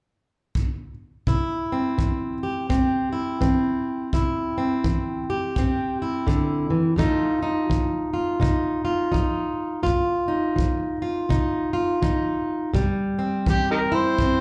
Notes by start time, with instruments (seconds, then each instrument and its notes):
0.55 kick
1.27 steel-string acoustic guitar C3 E4, kick
1.72 steel-string acoustic guitar C4
1.98 steel-string acoustic guitar E3, kick
2.43 steel-string acoustic guitar G4
2.69 steel-string acoustic guitar G2 C4, kick
3.12 steel-string acoustic guitar E4
3.41 steel-string acoustic guitar E3 C4, kick
4.13 steel-string acoustic guitar C3 E4, kick
4.58 steel-string acoustic guitar C4
4.84 steel-string acoustic guitar E3, kick
5.30 steel-string acoustic guitar G4
5.56 steel-string acoustic guitar G2 C4, kick
6.02 steel-string acoustic guitar E4
6.27 steel-string acoustic guitar D3, kick
6.70 steel-string acoustic guitar E3
6.96 steel-string acoustic guitar F2 F3 A3 D#4 F4, kick
7.43 steel-string acoustic guitar D#4
7.70 steel-string acoustic guitar F3, kick
8.13 steel-string acoustic guitar F4
8.40 steel-string acoustic guitar C3 D#4, kick
8.85 steel-string acoustic guitar F4
9.12 steel-string acoustic guitar F3 D#4, kick
9.83 steel-string acoustic guitar F2 F4, kick
10.28 steel-string acoustic guitar D#4
10.56 steel-string acoustic guitar F3, kick
11.02 steel-string acoustic guitar F4
11.29 steel-string acoustic guitar C3 D#4, kick
11.73 steel-string acoustic guitar F4
12.02 steel-string acoustic guitar F3 D#4, kick
12.73 steel-string acoustic guitar C3 G3, kick
13.19 steel-string acoustic guitar C4
13.46 steel-string acoustic guitar E3, harmonica G4, kick
13.71 harmonica D#4 G4 A#4
13.92 steel-string acoustic guitar E4, harmonica C5
14.19 steel-string acoustic guitar G2 C4, kick